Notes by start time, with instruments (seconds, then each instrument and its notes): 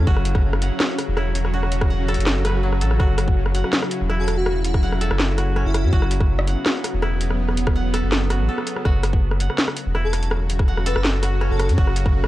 Already playing: synth drone C#3 F#3, koto C#4 E4 A4 F#5, synth texture C#4 C#5
0.07 sub bass F#1, koto F#4, synth drone F#4, kick
0.17 cross-stick
0.25 closed hi-hat
0.35 kick, cross-stick
0.53 cross-stick
0.62 koto F#5, closed hi-hat
0.80 cross-stick, snare
0.98 cross-stick, closed hi-hat
1.08 sub bass E1
1.17 koto E4, cross-stick
1.35 closed hi-hat
1.45 cross-stick
1.54 koto F#4
1.63 cross-stick
1.72 closed hi-hat
1.81 kick, cross-stick
1.90 koto F#5
2.08 koto A4, cross-stick, closed hi-hat
2.14 sub bass F#1, closed hi-hat
2.20 closed hi-hat
2.27 cross-stick, snare
2.45 koto B4, cross-stick, closed hi-hat
2.47 cross-stick
2.50 cross-stick
2.52 cross-stick
2.54 cross-stick
2.57 cross-stick
2.59 cross-stick
2.61 koto F#3, cross-stick
2.73 cross-stick
2.81 sub bass A1, koto A4, closed hi-hat
2.91 cross-stick
3.00 sub bass F#1, synth drone E4, koto F#4, synth texture F#4, kick, cross-stick
3.18 cross-stick, closed hi-hat
3.28 kick
3.46 cross-stick
3.55 koto F#5, closed hi-hat
3.64 cross-stick
3.73 snare
3.83 cross-stick
3.91 closed hi-hat
4.01 sub bass E1
4.10 koto E4, cross-stick
4.19 digital synth lead A4
4.28 cross-stick, closed hi-hat
4.37 digital synth lead F#4
4.46 cross-stick
4.64 digital synth lead F#4, closed hi-hat
4.74 kick, cross-stick
4.83 koto F#5
4.92 cross-stick
5.01 koto A4, closed hi-hat
5.11 sub bass F#1, cross-stick
5.20 snare
5.38 koto F#4, cross-stick, closed hi-hat
5.56 koto C#4, cross-stick
5.65 sub bass F#1, digital synth lead E4
5.74 cross-stick, closed hi-hat
5.84 sub bass F#2
5.93 sub bass F#1, synth drone B3, koto F#4, kick
6.02 cross-stick
6.11 closed hi-hat
6.21 kick, cross-stick
6.39 cross-stick
6.47 koto F#5, closed hi-hat
6.66 cross-stick, snare
6.84 cross-stick, closed hi-hat
6.94 sub bass E1
7.02 koto E4, cross-stick
7.21 closed hi-hat
7.30 cross-stick
7.48 cross-stick
7.57 closed hi-hat
7.67 kick, cross-stick
7.75 koto F#5
7.94 koto A4, cross-stick, closed hi-hat
8.03 sub bass F#1
8.12 cross-stick, snare
8.30 koto F#4, cross-stick, closed hi-hat
8.40 sub bass A1
8.49 koto A4
8.58 cross-stick
8.67 closed hi-hat
8.76 cross-stick
8.85 sub bass F#1, synth drone C#3 F#3 F#4, koto F#4, kick, cross-stick
9.03 cross-stick, closed hi-hat
9.13 kick
9.31 cross-stick
9.40 koto F#5, closed hi-hat
9.50 cross-stick
9.58 snare
9.68 cross-stick
9.76 closed hi-hat
9.86 sub bass E1
9.95 koto E4, cross-stick
10.04 digital synth lead A4
10.13 cross-stick, closed hi-hat
10.23 closed hi-hat
10.31 cross-stick
10.50 closed hi-hat
10.59 kick, cross-stick
10.68 koto F#5
10.77 cross-stick
10.86 koto A4, digital synth lead B4, closed hi-hat
10.96 sub bass F#1, digital synth lead B4, cross-stick
11.05 snare
11.23 koto F#4, cross-stick, closed hi-hat
11.41 koto C#4, cross-stick
11.51 sub bass F#1, digital synth lead A4
11.60 digital synth lead A4, cross-stick, closed hi-hat
11.69 sub bass F#2, closed hi-hat
11.78 sub bass F#1, koto F#4, kick
11.87 cross-stick
11.96 closed hi-hat
12.06 kick, cross-stick
12.24 cross-stick